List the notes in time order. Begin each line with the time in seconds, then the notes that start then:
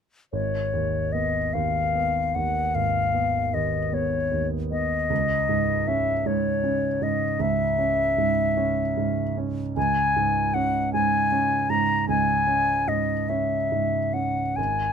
0.33 G#1 C#5
0.73 D#2
1.12 B3 D#5
1.53 D#2 F5
1.95 B3
2.35 D#2 F#5
2.75 G#1 F5
3.14 B3
3.54 D#2 D#5
3.92 B3 C#5
4.31 D#2
4.71 B3 D#5
5.10 C#2
5.49 G#2
5.87 C#4 E5
6.26 G#2 C#5
6.64 C#4
7.02 G#2 D#5
7.39 C#2 E5
7.79 C#4
8.18 G#2
8.57 C#4
8.97 G#2
9.38 C#4
9.77 C#2 G#5
10.16 G#2
10.54 C#4 F#5
10.93 G#2 G#5
11.32 C#4
11.70 G#2 A#5
12.09 C#2 G#5
12.47 C#4
12.87 G#2 D#5
13.29 C#4 E5
13.72 G#2
14.13 C#4 F#5
14.56 G#1 G#5